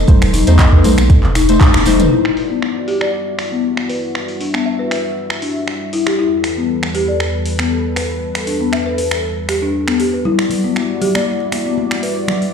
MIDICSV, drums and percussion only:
0, 0, Header, 1, 2, 480
1, 0, Start_track
1, 0, Key_signature, 1, "minor"
1, 0, Tempo, 508475
1, 77, Time_signature, 4, 2, 24, 8
1, 11834, End_track
2, 0, Start_track
2, 0, Title_t, "Drums"
2, 70, Note_on_c, 9, 54, 36
2, 76, Note_on_c, 9, 36, 112
2, 76, Note_on_c, 9, 64, 110
2, 79, Note_on_c, 9, 42, 47
2, 81, Note_on_c, 9, 62, 50
2, 164, Note_off_c, 9, 54, 0
2, 171, Note_off_c, 9, 36, 0
2, 171, Note_off_c, 9, 64, 0
2, 174, Note_off_c, 9, 42, 0
2, 175, Note_off_c, 9, 62, 0
2, 206, Note_on_c, 9, 26, 87
2, 206, Note_on_c, 9, 46, 51
2, 301, Note_off_c, 9, 26, 0
2, 301, Note_off_c, 9, 46, 0
2, 312, Note_on_c, 9, 62, 41
2, 316, Note_on_c, 9, 54, 87
2, 319, Note_on_c, 9, 46, 94
2, 322, Note_on_c, 9, 64, 88
2, 406, Note_off_c, 9, 62, 0
2, 411, Note_off_c, 9, 54, 0
2, 414, Note_off_c, 9, 46, 0
2, 416, Note_off_c, 9, 64, 0
2, 445, Note_on_c, 9, 54, 48
2, 446, Note_on_c, 9, 42, 58
2, 539, Note_off_c, 9, 54, 0
2, 540, Note_off_c, 9, 42, 0
2, 556, Note_on_c, 9, 36, 114
2, 556, Note_on_c, 9, 62, 49
2, 558, Note_on_c, 9, 26, 73
2, 558, Note_on_c, 9, 39, 101
2, 558, Note_on_c, 9, 42, 45
2, 566, Note_on_c, 9, 54, 37
2, 650, Note_off_c, 9, 36, 0
2, 651, Note_off_c, 9, 62, 0
2, 653, Note_off_c, 9, 26, 0
2, 653, Note_off_c, 9, 39, 0
2, 653, Note_off_c, 9, 42, 0
2, 660, Note_off_c, 9, 54, 0
2, 683, Note_on_c, 9, 36, 56
2, 686, Note_on_c, 9, 63, 54
2, 777, Note_off_c, 9, 36, 0
2, 781, Note_off_c, 9, 63, 0
2, 793, Note_on_c, 9, 62, 41
2, 796, Note_on_c, 9, 46, 91
2, 797, Note_on_c, 9, 64, 95
2, 801, Note_on_c, 9, 54, 91
2, 887, Note_off_c, 9, 62, 0
2, 891, Note_off_c, 9, 46, 0
2, 891, Note_off_c, 9, 64, 0
2, 896, Note_off_c, 9, 54, 0
2, 921, Note_on_c, 9, 63, 93
2, 924, Note_on_c, 9, 26, 89
2, 924, Note_on_c, 9, 42, 61
2, 928, Note_on_c, 9, 54, 51
2, 1016, Note_off_c, 9, 63, 0
2, 1018, Note_off_c, 9, 26, 0
2, 1018, Note_off_c, 9, 42, 0
2, 1023, Note_off_c, 9, 54, 0
2, 1035, Note_on_c, 9, 54, 35
2, 1036, Note_on_c, 9, 36, 115
2, 1037, Note_on_c, 9, 42, 49
2, 1129, Note_off_c, 9, 54, 0
2, 1130, Note_off_c, 9, 36, 0
2, 1131, Note_off_c, 9, 42, 0
2, 1163, Note_on_c, 9, 62, 50
2, 1164, Note_on_c, 9, 39, 33
2, 1258, Note_off_c, 9, 39, 0
2, 1258, Note_off_c, 9, 62, 0
2, 1278, Note_on_c, 9, 26, 74
2, 1278, Note_on_c, 9, 46, 90
2, 1282, Note_on_c, 9, 54, 87
2, 1372, Note_off_c, 9, 26, 0
2, 1372, Note_off_c, 9, 46, 0
2, 1376, Note_off_c, 9, 54, 0
2, 1402, Note_on_c, 9, 54, 49
2, 1403, Note_on_c, 9, 62, 40
2, 1405, Note_on_c, 9, 42, 57
2, 1496, Note_off_c, 9, 54, 0
2, 1497, Note_off_c, 9, 62, 0
2, 1499, Note_off_c, 9, 42, 0
2, 1516, Note_on_c, 9, 36, 112
2, 1519, Note_on_c, 9, 39, 102
2, 1519, Note_on_c, 9, 42, 46
2, 1519, Note_on_c, 9, 48, 60
2, 1519, Note_on_c, 9, 54, 38
2, 1610, Note_off_c, 9, 36, 0
2, 1613, Note_off_c, 9, 54, 0
2, 1614, Note_off_c, 9, 39, 0
2, 1614, Note_off_c, 9, 42, 0
2, 1614, Note_off_c, 9, 48, 0
2, 1644, Note_on_c, 9, 26, 88
2, 1644, Note_on_c, 9, 48, 61
2, 1644, Note_on_c, 9, 62, 53
2, 1646, Note_on_c, 9, 63, 105
2, 1738, Note_off_c, 9, 62, 0
2, 1739, Note_off_c, 9, 26, 0
2, 1739, Note_off_c, 9, 48, 0
2, 1740, Note_off_c, 9, 63, 0
2, 1751, Note_on_c, 9, 54, 83
2, 1758, Note_on_c, 9, 46, 91
2, 1759, Note_on_c, 9, 64, 78
2, 1846, Note_off_c, 9, 54, 0
2, 1853, Note_off_c, 9, 46, 0
2, 1853, Note_off_c, 9, 64, 0
2, 1884, Note_on_c, 9, 63, 53
2, 1885, Note_on_c, 9, 42, 59
2, 1885, Note_on_c, 9, 45, 82
2, 1886, Note_on_c, 9, 54, 50
2, 1979, Note_off_c, 9, 42, 0
2, 1979, Note_off_c, 9, 45, 0
2, 1979, Note_off_c, 9, 63, 0
2, 1980, Note_off_c, 9, 54, 0
2, 2124, Note_on_c, 9, 26, 80
2, 2219, Note_off_c, 9, 26, 0
2, 2237, Note_on_c, 9, 46, 85
2, 2331, Note_off_c, 9, 46, 0
2, 2477, Note_on_c, 9, 26, 68
2, 2572, Note_off_c, 9, 26, 0
2, 2717, Note_on_c, 9, 46, 81
2, 2811, Note_off_c, 9, 46, 0
2, 2843, Note_on_c, 9, 26, 80
2, 2937, Note_off_c, 9, 26, 0
2, 3197, Note_on_c, 9, 26, 70
2, 3197, Note_on_c, 9, 46, 83
2, 3291, Note_off_c, 9, 26, 0
2, 3291, Note_off_c, 9, 46, 0
2, 3562, Note_on_c, 9, 26, 83
2, 3656, Note_off_c, 9, 26, 0
2, 3677, Note_on_c, 9, 46, 85
2, 3772, Note_off_c, 9, 46, 0
2, 3919, Note_on_c, 9, 26, 72
2, 4014, Note_off_c, 9, 26, 0
2, 4044, Note_on_c, 9, 46, 47
2, 4139, Note_off_c, 9, 46, 0
2, 4159, Note_on_c, 9, 46, 84
2, 4254, Note_off_c, 9, 46, 0
2, 4287, Note_on_c, 9, 26, 86
2, 4381, Note_off_c, 9, 26, 0
2, 4638, Note_on_c, 9, 26, 72
2, 4638, Note_on_c, 9, 46, 86
2, 4732, Note_off_c, 9, 26, 0
2, 4732, Note_off_c, 9, 46, 0
2, 5005, Note_on_c, 9, 26, 87
2, 5099, Note_off_c, 9, 26, 0
2, 5118, Note_on_c, 9, 46, 84
2, 5212, Note_off_c, 9, 46, 0
2, 5358, Note_on_c, 9, 26, 71
2, 5452, Note_off_c, 9, 26, 0
2, 5597, Note_on_c, 9, 46, 84
2, 5692, Note_off_c, 9, 46, 0
2, 5727, Note_on_c, 9, 26, 85
2, 5821, Note_off_c, 9, 26, 0
2, 6078, Note_on_c, 9, 26, 77
2, 6078, Note_on_c, 9, 46, 85
2, 6173, Note_off_c, 9, 26, 0
2, 6173, Note_off_c, 9, 46, 0
2, 6446, Note_on_c, 9, 26, 88
2, 6540, Note_off_c, 9, 26, 0
2, 6558, Note_on_c, 9, 46, 82
2, 6652, Note_off_c, 9, 46, 0
2, 6798, Note_on_c, 9, 26, 77
2, 6893, Note_off_c, 9, 26, 0
2, 7038, Note_on_c, 9, 46, 81
2, 7132, Note_off_c, 9, 46, 0
2, 7164, Note_on_c, 9, 26, 90
2, 7259, Note_off_c, 9, 26, 0
2, 7518, Note_on_c, 9, 26, 75
2, 7518, Note_on_c, 9, 46, 81
2, 7612, Note_off_c, 9, 26, 0
2, 7612, Note_off_c, 9, 46, 0
2, 7884, Note_on_c, 9, 26, 85
2, 7884, Note_on_c, 9, 46, 45
2, 7978, Note_off_c, 9, 26, 0
2, 7978, Note_off_c, 9, 46, 0
2, 7997, Note_on_c, 9, 46, 84
2, 8092, Note_off_c, 9, 46, 0
2, 8238, Note_on_c, 9, 26, 72
2, 8333, Note_off_c, 9, 26, 0
2, 8479, Note_on_c, 9, 46, 82
2, 8573, Note_off_c, 9, 46, 0
2, 8603, Note_on_c, 9, 26, 90
2, 8698, Note_off_c, 9, 26, 0
2, 8956, Note_on_c, 9, 26, 74
2, 8956, Note_on_c, 9, 46, 80
2, 9051, Note_off_c, 9, 26, 0
2, 9051, Note_off_c, 9, 46, 0
2, 9323, Note_on_c, 9, 26, 86
2, 9418, Note_off_c, 9, 26, 0
2, 9437, Note_on_c, 9, 46, 77
2, 9531, Note_off_c, 9, 46, 0
2, 9677, Note_on_c, 9, 64, 95
2, 9679, Note_on_c, 9, 62, 46
2, 9772, Note_off_c, 9, 64, 0
2, 9773, Note_off_c, 9, 62, 0
2, 9806, Note_on_c, 9, 26, 81
2, 9900, Note_off_c, 9, 26, 0
2, 9907, Note_on_c, 9, 64, 83
2, 9910, Note_on_c, 9, 62, 30
2, 9918, Note_on_c, 9, 46, 79
2, 10001, Note_off_c, 9, 64, 0
2, 10004, Note_off_c, 9, 62, 0
2, 10012, Note_off_c, 9, 46, 0
2, 10153, Note_on_c, 9, 62, 45
2, 10159, Note_on_c, 9, 26, 70
2, 10248, Note_off_c, 9, 62, 0
2, 10253, Note_off_c, 9, 26, 0
2, 10396, Note_on_c, 9, 64, 84
2, 10399, Note_on_c, 9, 46, 77
2, 10402, Note_on_c, 9, 62, 36
2, 10490, Note_off_c, 9, 64, 0
2, 10493, Note_off_c, 9, 46, 0
2, 10497, Note_off_c, 9, 62, 0
2, 10524, Note_on_c, 9, 63, 89
2, 10527, Note_on_c, 9, 26, 87
2, 10618, Note_off_c, 9, 63, 0
2, 10621, Note_off_c, 9, 26, 0
2, 10765, Note_on_c, 9, 62, 43
2, 10859, Note_off_c, 9, 62, 0
2, 10873, Note_on_c, 9, 63, 57
2, 10878, Note_on_c, 9, 26, 70
2, 10878, Note_on_c, 9, 46, 75
2, 10967, Note_off_c, 9, 63, 0
2, 10972, Note_off_c, 9, 26, 0
2, 10972, Note_off_c, 9, 46, 0
2, 10999, Note_on_c, 9, 62, 37
2, 11093, Note_off_c, 9, 62, 0
2, 11116, Note_on_c, 9, 63, 88
2, 11210, Note_off_c, 9, 63, 0
2, 11243, Note_on_c, 9, 62, 45
2, 11244, Note_on_c, 9, 26, 84
2, 11338, Note_off_c, 9, 26, 0
2, 11338, Note_off_c, 9, 62, 0
2, 11357, Note_on_c, 9, 46, 76
2, 11451, Note_off_c, 9, 46, 0
2, 11589, Note_on_c, 9, 64, 86
2, 11595, Note_on_c, 9, 62, 46
2, 11596, Note_on_c, 9, 26, 68
2, 11683, Note_off_c, 9, 64, 0
2, 11689, Note_off_c, 9, 62, 0
2, 11690, Note_off_c, 9, 26, 0
2, 11724, Note_on_c, 9, 46, 44
2, 11818, Note_off_c, 9, 46, 0
2, 11834, End_track
0, 0, End_of_file